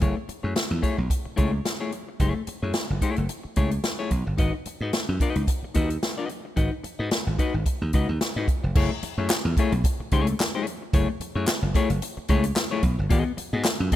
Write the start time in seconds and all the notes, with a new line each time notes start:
0.01 F#1 A3 E4 G#4 C#5, kick, closed hi-hat
0.17 muted clean electric guitar stroke
0.28 muted clean electric guitar stroke, muted slap bass stroke, closed hi-hat
0.43 F#2 A3 E4 G#4 C#5
0.55 muted clean electric guitar stroke, snare, closed hi-hat
0.71 E2, muted clean electric guitar stroke
0.82 A3 E4 G#4 C#5, kick, closed hi-hat
0.98 B1, muted clean electric guitar stroke
1.10 muted clean electric guitar stroke, kick, closed hi-hat
1.25 muted clean electric guitar stroke, muted slap bass stroke
1.36 C#2 A3 E4 G#4 C#5, kick, closed hi-hat
1.53 muted clean electric guitar stroke
1.65 muted clean electric guitar stroke, snare, closed hi-hat
1.80 A3 E4 G#4 C#5
1.92 muted clean electric guitar stroke, closed hi-hat
2.09 muted clean electric guitar stroke
2.20 F#1 A3 E4 G#4 C#5, kick, closed hi-hat
2.35 muted clean electric guitar stroke
2.47 muted slap bass stroke, muted clean electric guitar stroke, closed hi-hat
2.62 F#2 A3 E4 G#4 C#5
2.74 muted clean electric guitar stroke, snare, closed hi-hat
2.89 F#1, muted clean electric guitar stroke
3.01 A3 E4 G#4 C#5, kick, closed hi-hat
3.16 F#1, muted clean electric guitar stroke, closed hi-hat
3.29 muted clean electric guitar stroke, closed hi-hat
3.43 muted clean electric guitar stroke, muted slap bass stroke
3.56 C#2 A3 E4 G#4 C#5, kick, closed hi-hat
3.71 muted clean electric guitar stroke, closed hi-hat
3.83 muted clean electric guitar stroke, snare, closed hi-hat
3.99 A3 E4 G#4 C#5
4.11 B1, muted clean electric guitar stroke, kick, closed hi-hat
4.26 G1, muted clean electric guitar stroke
4.38 G#1 D#4 F#4 B4 D#5, kick, closed hi-hat
4.54 muted clean electric guitar stroke
4.66 muted slap bass stroke, muted clean electric guitar stroke, closed hi-hat
4.81 G#2 D#4 F#4 B4 D#5
4.93 muted clean electric guitar stroke, snare, closed hi-hat
5.09 F#2, muted clean electric guitar stroke
5.20 D#4 F#4 B4 D#5, kick, closed hi-hat
5.36 C#2, muted clean electric guitar stroke, closed hi-hat
5.47 muted clean electric guitar stroke, kick, closed hi-hat
5.63 muted slap bass stroke, muted clean electric guitar stroke
5.74 D#2 D#4 F#4 B4 D#5, kick, closed hi-hat
5.90 muted clean electric guitar stroke, closed hi-hat
6.03 muted clean electric guitar stroke, snare, closed hi-hat
6.18 D#4 F#4 B4 D#5
6.29 muted clean electric guitar stroke, closed hi-hat
6.45 muted clean electric guitar stroke
6.56 G#1 D#4 F#4 B4 D#5, kick, closed hi-hat
6.72 muted clean electric guitar stroke
6.83 muted clean electric guitar stroke, muted slap bass stroke, closed hi-hat
6.99 G#2 D#4 F#4 B4 D#5
7.11 muted clean electric guitar stroke, snare, closed hi-hat
7.27 G#1, muted clean electric guitar stroke
7.38 D#4 F#4 B4 D#5, kick, closed hi-hat
7.54 G#1, muted clean electric guitar stroke
7.66 muted clean electric guitar stroke, kick, closed hi-hat
7.82 D#2, muted clean electric guitar stroke
7.93 C#2 D#4 F#4 B4 D#5, kick, closed hi-hat
8.09 D#2, muted clean electric guitar stroke
8.21 muted clean electric guitar stroke, snare, closed hi-hat
8.36 G#2 D#4 F#4 B4 D#5
8.48 muted clean electric guitar stroke, kick, closed hi-hat
8.63 F1, muted clean electric guitar stroke
8.75 F#1 A3 E4 G#4 C#5, kick, crash
8.92 muted clean electric guitar stroke
9.03 muted slap bass stroke, muted clean electric guitar stroke, closed hi-hat
9.18 F#2 A3 E4 G#4 C#5
9.30 snare, clap, closed hi-hat
9.45 E2, muted clean electric guitar stroke
9.57 A3 E4 G#4 C#5, kick, closed hi-hat
9.72 B1, muted clean electric guitar stroke, closed hi-hat
9.84 muted clean electric guitar stroke, kick, closed hi-hat
10.00 muted slap bass stroke, muted clean electric guitar stroke
10.12 C#2 A3 E4 G#4 C#5, kick, closed hi-hat
10.27 muted clean electric guitar stroke, closed hi-hat
10.40 muted clean electric guitar stroke, snare, clap, closed hi-hat
10.55 A3 E4 G#4 C#5
10.67 muted clean electric guitar stroke, closed hi-hat
10.82 muted clean electric guitar stroke
10.93 F#1 A3 E4 G#4 C#5, kick, closed hi-hat
11.09 muted clean electric guitar stroke
11.20 muted slap bass stroke, muted clean electric guitar stroke, closed hi-hat
11.35 F#2 A3 E4 G#4 C#5
11.47 muted clean electric guitar stroke, snare, clap, closed hi-hat
11.62 F#1, muted clean electric guitar stroke
11.75 A3 E4 G#4 C#5, kick, closed hi-hat
11.90 F#1, muted clean electric guitar stroke, closed hi-hat
12.02 muted clean electric guitar stroke, closed hi-hat
12.17 muted clean electric guitar stroke, muted slap bass stroke
12.28 C#2 A3 E4 G#4 C#5, kick, closed hi-hat
12.44 muted clean electric guitar stroke, closed hi-hat
12.56 muted clean electric guitar stroke, snare, clap, closed hi-hat
12.71 A3 E4 G#4 C#5
12.83 B1, muted clean electric guitar stroke, kick, closed hi-hat
12.99 G1, muted clean electric guitar stroke
13.10 G#1 B3 F#4 G#4 D#5, kick, closed hi-hat
13.25 muted clean electric guitar stroke
13.37 muted clean electric guitar stroke, muted slap bass stroke, closed hi-hat
13.53 G#2 B3 F#4 G#4 D#5
13.64 muted clean electric guitar stroke, snare, clap, closed hi-hat
13.80 F#2, muted clean electric guitar stroke
13.92 B3, kick, closed hi-hat